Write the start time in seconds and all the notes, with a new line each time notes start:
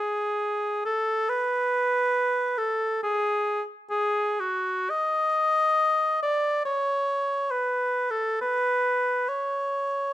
Already playing: G#4
0.85 A4
1.30 B4
2.58 A4
3.03 G#4
3.91 G#4
4.40 F#4
4.90 D#5
6.23 D5
6.65 C#5
7.51 B4
8.11 A4
8.41 B4
9.29 C#5